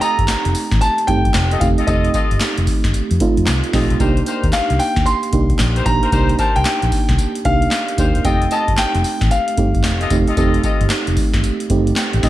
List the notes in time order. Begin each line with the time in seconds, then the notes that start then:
Already playing: A3 C4 D#4 G4
0.01 F4 G4 A4 D#5 A#5, closed hi-hat, tambourine
0.19 G1, kick, closed hi-hat
0.28 snare, clap, closed hi-hat, tambourine
0.45 F1, closed hi-hat
0.55 open hi-hat, tambourine
0.71 A1, kick, snare, closed hi-hat
0.81 A5, closed hi-hat, tambourine
0.98 closed hi-hat
1.07 G1 A3 C4 D#4 G4 G5, kick, closed hi-hat
1.25 kick, closed hi-hat
1.34 F1, snare, clap, closed hi-hat, tambourine
1.51 F4 G4 A4 D#5, closed hi-hat
1.60 F1 A3 C4 D#4 G4 F5, kick, closed hi-hat, tambourine
1.78 F4 G4 A4 D#5, closed hi-hat
1.87 F1 A3 C4 D#4 F4 G4 A4 D#5, kick, closed hi-hat, tambourine
2.05 closed hi-hat
2.14 F4 G4 A4 D#5, kick, closed hi-hat, tambourine
2.31 G1, closed hi-hat
2.41 snare, clap, closed hi-hat, tambourine
2.58 F1, closed hi-hat
2.67 kick, open hi-hat, tambourine
2.84 G1, kick, snare, closed hi-hat
2.94 closed hi-hat, tambourine
3.11 F2, closed hi-hat
3.20 A3 C4 D#4 F4, kick, closed hi-hat
3.37 F2, closed hi-hat
3.47 C2, snare, clap, closed hi-hat, tambourine
3.64 closed hi-hat
3.73 A#1 A3 C4 D#4 F4 G4 A4 D#5, kick, snare, open hi-hat, tambourine
3.90 B1, closed hi-hat
4.00 C2 A#3 D4 D#4 G4 A#4 C5, kick, closed hi-hat, tambourine
4.17 closed hi-hat
4.26 D#4 G4 A#4 C5, closed hi-hat, tambourine
4.43 D#2, kick, closed hi-hat
4.53 F5, snare, clap, closed hi-hat, tambourine
4.70 C2, closed hi-hat
4.79 G5, open hi-hat, tambourine
4.96 D#2, kick, snare, closed hi-hat
5.06 C6, closed hi-hat, tambourine
5.23 closed hi-hat
5.33 C2 A#3 D4 D#4 G4, kick, closed hi-hat
5.50 kick, closed hi-hat
5.59 A#1, snare, clap, closed hi-hat, tambourine
5.76 D#4 G4 A#4 C5, closed hi-hat
5.86 A#1 A#3 D4 D#4 G4 A#5, kick, closed hi-hat, tambourine
6.03 D#4 G4 A#4 C5, closed hi-hat
6.12 C2 A#3 D4 D#4 G4 A#4 C5, kick, closed hi-hat, tambourine
6.29 closed hi-hat
6.38 D#4 G4 A#4 C5 A5, kick, closed hi-hat, tambourine
6.56 C2 G5, closed hi-hat
6.65 snare, clap, closed hi-hat, tambourine
6.82 A#1, closed hi-hat
6.92 kick, open hi-hat, tambourine
7.09 C2, kick, snare, closed hi-hat
7.18 closed hi-hat, tambourine
7.35 closed hi-hat
7.45 C2 A#3 D4 D#4 G4 F5, kick, closed hi-hat
7.62 closed hi-hat
7.71 snare, clap, closed hi-hat, tambourine
7.88 closed hi-hat
7.98 D#2 A#3 D4 D#4 G4 A#4 C5, kick, closed hi-hat, tambourine
8.15 E1, closed hi-hat
8.25 F1 A3 C4 D#4 F4 G4 A4 D#5 G5, kick, closed hi-hat, tambourine
8.42 closed hi-hat
8.51 F4 G4 A4 D#5 A5, closed hi-hat, tambourine
8.68 G1, kick, closed hi-hat
8.78 G5, snare, clap, closed hi-hat, tambourine
8.95 F1, closed hi-hat
9.04 open hi-hat, tambourine
9.21 A1, kick, snare, closed hi-hat
9.31 F5, closed hi-hat, tambourine
9.48 closed hi-hat
9.57 G1 A3 C4 D#4 G4, kick, closed hi-hat
9.75 kick, closed hi-hat
9.84 F1, snare, clap, closed hi-hat, tambourine
10.01 F4 G4 A4 D#5, closed hi-hat
10.10 F1 A3 C4 D#4 G4, kick, closed hi-hat, tambourine
10.27 F4 G4 A4 D#5, closed hi-hat
10.37 F1 A3 C4 D#4 F4 G4 A4 D#5, kick, closed hi-hat, tambourine
10.54 closed hi-hat
10.64 F4 G4 A4 D#5, kick, closed hi-hat, tambourine
10.81 G1, closed hi-hat
10.90 snare, clap, closed hi-hat, tambourine
11.07 F1, closed hi-hat
11.17 kick, open hi-hat, tambourine
11.34 G1, kick, snare, closed hi-hat
11.43 closed hi-hat, tambourine
11.60 closed hi-hat
11.70 G1 A3 C4 D#4 G4, kick, closed hi-hat
11.87 closed hi-hat
11.96 G5, snare, clap, closed hi-hat, tambourine
12.13 A1, closed hi-hat
12.23 A#1 A3 C4 D#4 F4 G4 A4 D#5, kick, snare, open hi-hat, tambourine